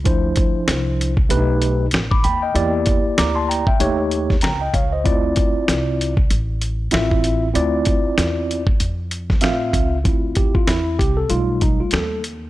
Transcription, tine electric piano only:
0.05 1.13 F3 medium
0.05 1.13 D4 medium
0.05 1.13 E4 medium
0.05 1.14 C5 medium
1.29 1.84 A3 medium
1.29 1.38 D4 medium
1.29 1.85 G4 medium
1.29 1.85 B4 loud
1.36 1.88 D#4 medium
2.11 2.23 B5 soft
2.11 2.24 D6 medium
2.24 2.41 G5 medium
2.24 2.41 B5 medium
2.42 2.72 D#5 medium
2.42 2.72 G5 medium
2.54 3.63 A#3 medium
2.54 3.63 E4 medium
2.54 3.63 G4 medium
2.54 3.64 D5 loud
3.18 3.36 A#5 soft
3.18 3.35 D6 medium
3.35 3.49 A5 medium
3.35 3.48 C6 medium
3.49 3.66 G5 medium
3.49 3.66 A#5 medium
3.67 3.97 E5 medium
3.67 3.97 G5 medium
3.80 4.35 A3 medium
3.80 4.35 D#4 loud
3.80 4.35 G4 loud
3.80 4.35 C#5 loud
4.43 4.60 G5 medium
4.43 4.60 A#5 medium
4.61 4.74 D#5 medium
4.61 4.73 G5 medium
4.74 4.92 C#5 medium
4.74 4.91 F5 medium
4.92 5.22 C5 medium
4.92 5.22 D#5 medium
5.04 6.13 C4 medium
5.04 6.13 E4 medium
5.04 6.13 F4 medium
5.04 6.14 D5 loud
6.92 7.47 C4 medium
6.92 7.47 E4 medium
6.92 7.47 F4 medium
6.92 7.48 E5 medium
7.54 8.63 C4 medium
7.54 8.63 E4 medium
7.54 8.63 F4 medium
7.54 8.63 D5 loud
9.41 9.97 C4 medium
9.41 9.97 F4 medium
9.41 9.97 E5 medium
9.41 9.97 F5 loud
10.04 11.26 C4 medium
10.04 10.66 E4 medium
10.04 10.53 F4 medium
10.36 10.55 G4 medium
10.54 10.68 F4 medium
10.67 11.00 E4 medium
10.99 11.18 G4 loud
11.17 11.31 A4 loud
11.29 12.19 G3 medium
11.29 12.20 A3 medium
11.29 11.60 D#4 medium
11.29 11.62 F4 loud
11.62 11.80 D#4 medium
11.80 11.94 F4 medium
11.93 12.22 A4 medium

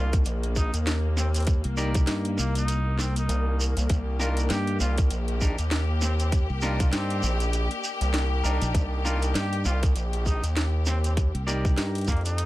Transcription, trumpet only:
0.00 0.13 F4 medium
0.57 0.74 D#4 medium
1.18 1.29 C4 medium
1.36 1.44 C4 medium
2.39 2.53 A#3 medium
2.57 2.97 D#4 loud
3.00 3.13 C4 medium
3.18 3.60 D#4 medium
4.21 4.38 F4 medium
4.51 4.79 G4 medium
4.81 4.98 F4 medium
6.03 6.14 C4 medium
6.20 6.28 C4 medium
6.64 6.74 F4 medium
6.81 6.89 F4 medium
6.94 7.41 C4 medium
9.04 9.22 F4 medium
9.35 9.63 G4 medium
9.65 9.83 F4 loud
10.26 10.44 D#4 medium
10.87 10.98 C4 medium
11.05 11.13 C4 medium
12.08 12.22 A#3 medium
12.25 12.46 D#4 medium

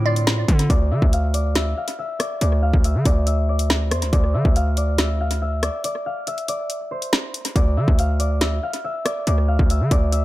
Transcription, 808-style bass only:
0.00 0.45 A2 loud
0.48 0.69 D3 loud
0.70 0.93 D2 loud
0.91 1.02 D3 loud
1.02 1.74 D2 medium
2.41 2.72 D2 loud
2.74 2.96 D2 loud
2.95 3.05 D3 loud
3.06 3.93 D2 loud
3.91 4.04 E2 loud
4.02 4.12 D2 loud
4.13 4.36 D2 loud
4.34 4.44 D3 loud
4.45 5.70 D2 loud
7.56 7.79 D2 loud
7.77 7.87 D3 medium
7.88 8.60 D2 loud
9.27 9.58 D2 loud
9.59 9.82 D2 loud
9.81 9.91 D3 loud
9.91 10.25 D2 loud

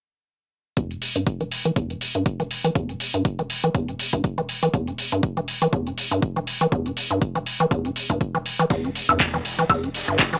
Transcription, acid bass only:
0.77 0.92 E2 medium
0.91 0.97 G2 medium
1.16 1.25 G2 medium
1.40 1.44 E3 medium
1.65 1.71 E3 medium
1.76 1.92 E2 medium
1.90 1.96 G2 medium
2.15 2.24 G2 medium
2.40 2.43 E3 medium
2.64 2.70 E3 medium
2.76 2.91 E2 medium
2.89 2.95 G2 medium
3.14 3.23 G2 medium
3.39 3.42 E3 medium
3.64 3.70 E3 medium
3.75 3.90 E2 medium
3.88 3.94 G2 medium
4.13 4.22 G2 medium
4.38 4.41 E3 medium
4.63 4.69 E3 medium
4.74 4.89 E2 medium
4.87 4.94 G2 medium
5.12 5.21 G2 medium
5.37 5.41 E3 medium
5.62 5.68 E3 medium
5.73 5.88 E2 medium
5.87 5.93 G2 medium
6.11 6.20 G2 medium
6.36 6.40 E3 medium
6.61 6.67 E3 medium
6.72 6.87 E2 medium
6.86 6.92 G2 medium
7.11 7.20 G2 medium
7.35 7.39 E3 medium
7.60 7.66 E3 medium
7.71 7.86 E2 medium
7.85 7.91 G2 medium
8.10 8.19 G2 medium
8.35 8.38 E3 medium
8.59 8.65 E3 medium
8.70 8.86 E2 medium
8.84 8.90 G2 medium
9.09 9.18 G2 medium
9.34 9.37 E3 medium
9.59 9.65 E3 medium
9.70 9.85 E2 medium
9.83 9.89 G2 medium
10.08 10.17 G2 medium
10.33 10.37 E3 medium

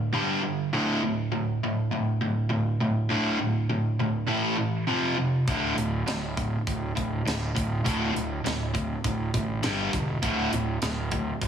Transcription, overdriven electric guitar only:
0.13 0.41 G2 medium
0.13 0.41 D3 medium
0.13 0.41 G3 medium
0.42 0.69 G2 medium
0.42 0.70 D3 medium
0.73 1.01 D2 medium
0.73 1.01 A2 medium
0.73 1.01 D3 medium
1.03 1.30 D2 medium
1.03 1.29 A2 medium
1.32 1.59 D2 medium
1.32 1.59 A2 medium
1.63 1.89 D2 medium
1.63 1.90 A2 medium
1.91 2.18 D2 medium
1.91 2.19 A2 medium
2.21 2.48 D2 medium
2.21 2.48 A2 medium
2.49 2.77 D2 medium
2.49 2.77 A2 medium
2.80 3.07 D2 medium
2.80 3.08 A2 medium
3.09 3.38 D2 medium
3.09 3.38 A2 medium
3.09 3.38 D3 medium
3.39 3.67 D2 medium
3.39 3.67 A2 medium
3.69 3.96 D2 medium
3.69 3.97 A2 medium
4.00 4.26 D2 medium
4.00 4.26 A2 medium
4.27 4.56 A2 medium
4.27 4.57 E3 medium
4.27 4.57 A3 medium
4.57 4.85 A2 medium
4.57 4.85 E3 medium
4.87 5.16 F2 medium
4.87 5.16 C3 medium
4.87 5.16 F3 medium
5.17 5.44 F2 medium
5.17 5.45 C3 medium
5.48 5.75 D2 medium
5.48 5.75 A2 medium
5.48 5.76 D3 loud
5.76 6.04 D2 medium
5.76 6.04 A2 medium
6.07 6.34 D2 medium
6.07 6.34 A2 medium
6.37 6.64 D2 medium
6.37 6.64 A2 medium
6.68 6.94 D2 medium
6.68 6.94 A2 medium
6.96 7.23 D2 medium
6.96 7.23 A2 medium
7.25 7.53 D2 medium
7.25 7.53 A2 medium
7.55 7.82 D2 medium
7.55 7.82 A2 medium
7.85 8.13 D2 medium
7.85 8.13 A2 medium
7.85 8.14 D3 medium
8.14 8.42 D2 medium
8.14 8.42 A2 medium
8.44 8.71 D2 medium
8.44 8.72 A2 medium
8.74 9.01 D2 medium
8.74 9.01 A2 medium
9.04 9.31 D2 medium
9.04 9.31 A2 medium
9.34 9.61 D2 medium
9.34 9.61 A2 medium
9.63 9.91 G2 medium
9.63 9.91 D3 medium
9.63 9.91 G3 medium
9.94 10.20 G2 medium
9.94 10.20 D3 medium
10.23 10.51 D2 medium
10.23 10.51 A2 medium
10.23 10.51 D3 loud
10.53 10.80 D2 medium
10.53 10.80 A2 medium
10.82 11.09 D2 medium
10.82 11.09 A2 medium
11.12 11.39 D2 medium
11.12 11.39 A2 medium
11.42 11.48 D2 medium
11.42 11.48 A2 medium

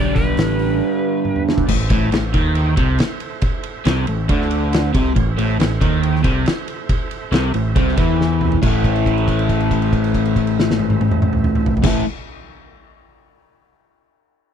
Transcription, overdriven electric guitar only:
0.00 1.66 G2 medium
0.00 1.67 D3 medium
0.00 1.68 G3 medium
1.68 1.85 A2 medium
1.89 2.11 A2 loud
2.12 2.29 A2 medium
2.33 2.76 D#3 loud
2.77 2.98 C3 loud
3.85 4.06 C3 loud
4.08 4.25 A2 medium
4.29 4.93 D3 loud
4.94 5.15 C3 loud
5.16 5.33 A2 medium
5.38 5.58 A2 loud
5.59 5.77 A2 medium
5.81 6.23 D#3 loud
6.23 6.45 C3 loud
7.32 7.53 C3 loud
7.54 7.72 A2 medium
7.76 7.97 C3 loud
7.97 8.61 E3 loud
8.62 11.82 A2 loud
8.62 11.84 E3 loud
8.66 11.86 A3 loud
11.82 12.02 A2 medium
11.82 12.03 E3 loud
11.82 12.04 A3 loud

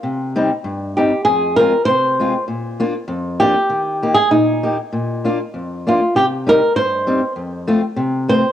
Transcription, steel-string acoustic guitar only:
0.03 0.50 C3 medium
0.36 0.49 G3 medium
0.36 0.49 C4 medium
0.36 0.49 D#4 medium
0.64 1.11 G2 medium
0.97 1.11 G3 medium
0.97 1.11 C4 soft
0.97 1.11 D#4 medium
1.26 1.73 F2 medium
1.59 1.72 G#3 medium
1.59 1.72 C4 medium
1.59 1.72 F4 medium
1.88 2.34 C3 medium
2.20 2.33 G#3 medium
2.20 2.33 C4 soft
2.20 2.33 F4 medium
2.48 2.94 A#2 medium
2.80 2.93 A#3 medium
2.80 2.93 D4 medium
2.80 2.93 F4 medium
3.08 3.54 F2 medium
3.41 3.54 A#3 medium
3.41 3.54 D4 medium
3.41 3.54 F4 medium
3.69 4.16 D#3 medium
4.03 4.15 A#3 medium
4.03 4.15 D#4 medium
4.03 4.15 G4 medium
4.31 4.77 A#2 medium
4.63 4.76 A#3 medium
4.63 4.76 D#4 medium
4.63 4.76 G4 medium
4.93 5.39 A#2 medium
5.24 5.38 A#3 medium
5.24 5.38 D4 medium
5.24 5.38 F4 medium
5.54 6.00 F2 medium
5.87 5.99 A#3 medium
5.87 5.99 D4 medium
5.87 6.00 F4 medium
6.15 6.61 C3 soft
6.47 6.59 G3 medium
6.47 6.59 C4 medium
6.47 6.60 D#4 medium
6.76 7.21 G2 soft
7.07 7.20 G3 medium
7.07 7.20 C4 medium
7.07 7.20 D#4 medium
7.36 7.82 F2 medium
7.68 7.80 A3 medium
7.68 7.80 C4 medium
7.68 7.81 F4 medium
7.96 8.42 C3 medium
8.28 8.41 A3 medium
8.28 8.41 C4 medium
8.28 8.41 F4 medium

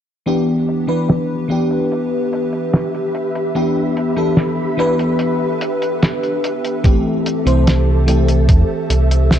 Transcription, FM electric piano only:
0.26 0.83 E3 medium
0.26 0.84 B3 medium
0.26 0.84 D4 medium
0.26 0.84 G4 medium
0.87 1.45 E3 medium
0.87 1.45 B3 medium
0.87 1.45 D4 medium
0.87 1.45 B4 medium
1.48 3.50 E3 medium
1.48 3.50 B3 medium
1.48 3.51 D4 medium
1.48 3.51 G4 medium
3.55 4.12 E3 medium
3.55 4.12 B3 medium
3.55 4.12 D4 medium
3.55 4.13 G4 medium
4.16 4.37 E3 medium
4.16 4.37 B3 medium
4.16 4.37 D4 medium
4.16 4.38 A4 medium
4.77 6.79 E3 medium
4.77 6.79 B3 medium
4.77 6.80 D4 medium
4.77 6.80 B4 loud
6.84 7.41 E3 medium
6.84 7.41 A3 medium
6.84 7.41 C4 medium
6.84 7.42 G4 medium
7.45 8.03 E3 medium
7.45 8.03 A3 medium
7.45 8.03 C4 medium
7.45 8.03 C5 medium
8.06 9.39 E3 medium
8.06 9.39 A3 medium
8.06 9.39 C4 medium
8.06 9.39 G4 medium

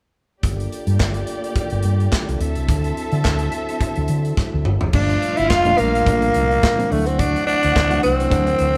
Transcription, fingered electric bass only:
0.44 0.66 G1 medium
0.87 0.97 G2 medium
1.00 1.22 G1 medium
1.72 1.82 G1 medium
1.84 2.06 G2 medium
2.29 2.38 C2 medium
2.40 2.56 D2 medium
2.56 2.66 C2 medium
2.69 2.91 D2 medium
3.12 3.22 D3 medium
3.26 3.47 D2 medium
3.97 4.07 D2 medium
4.10 4.31 D3 medium
4.54 4.64 D2 medium
4.66 4.78 G1 medium
4.82 4.92 F1 medium
4.94 5.16 G1 medium
5.39 5.51 G1 medium
5.51 5.73 F1 medium
5.80 6.01 A#1 medium
6.07 6.29 A#1 medium
6.36 6.57 C2 medium
6.92 7.35 D2 medium
7.64 7.74 D2 loud
7.76 7.98 D2 medium
8.05 8.26 C2 medium
8.32 8.54 D2 medium
8.60 8.77 D2 medium

